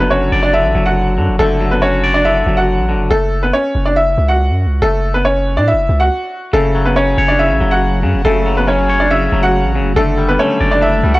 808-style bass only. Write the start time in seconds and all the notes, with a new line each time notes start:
Already playing: F#1
0.32 F#1
0.64 A1
0.75 F#1
1.18 F#2
1.28 F#1
1.39 F#1
2.46 F#1
2.78 A1
2.94 F#1
3.11 F#1
3.75 F#1
4.18 C#2
4.50 F#2
4.66 C#2
4.82 F#1
5.57 A2
5.73 F#1
5.89 C#2
6.53 F#1
7.18 F#1
7.50 A1
7.61 F#1
8.03 F#2
8.14 F#1
8.25 F#1
9.32 F#1
9.64 A1
9.80 F#1
9.96 F#1
10.61 F#1
11.03 C#2